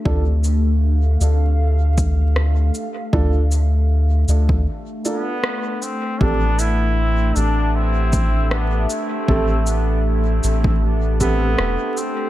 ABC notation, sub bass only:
X:1
M:4/4
L:1/8
Q:"Swing 16ths" 1/4=78
K:Am
V:1 name="Sub bass" clef=bass
D,,3 D,,4 z | D,,3 D,, z4 | A,,,3 A,,,4 z | A,,,3 A,,,3 E,,, z |]